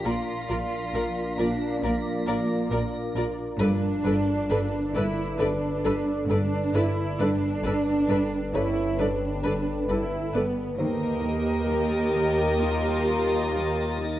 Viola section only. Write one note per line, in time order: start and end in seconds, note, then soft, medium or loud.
0.05 0.13 F4 medium
0.49 0.57 F4 soft
0.94 1.02 F4 medium
1.38 1.46 F4 soft
1.83 1.91 F4 medium
2.28 2.36 F4 medium
2.72 2.80 F4 medium
3.17 3.25 F4 medium
3.61 3.69 A4 medium
4.06 4.14 A4 medium
4.51 4.59 A4 medium
4.95 5.03 A4 medium
5.40 5.48 A4 medium
5.85 5.93 A4 medium
6.30 6.38 A4 medium
6.75 6.83 A4 medium
7.21 7.29 A4 medium
7.66 7.74 A4 medium
8.09 8.17 A4 medium
8.55 8.63 A4 soft
9.00 9.08 A4 soft
9.46 9.54 A4 soft
9.90 9.98 A4 soft
10.35 10.43 A4 soft
10.80 14.20 G4 medium